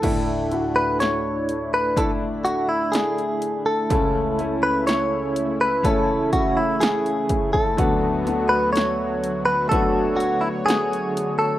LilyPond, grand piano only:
<<
  \new Staff \with { instrumentName = "Grand piano" } { \time 4/4 \key d \lydian \tempo 4 = 62 <a d' e' a'>8 <a d' e' fis'>4. <a d' e'>2 | <a cis' e' a'>8 <a cis' e' a'>4. <a cis' e' cis''>2 | <a b d' fis'>8 <a b d' fis'>4. <a b d' fis'>2 | }
  \new Staff \with { instrumentName = "Grand piano" } { \clef bass \time 4/4 \key d \lydian <d, a,>1 | <cis, cis>1 | <d, d>1 | }
>>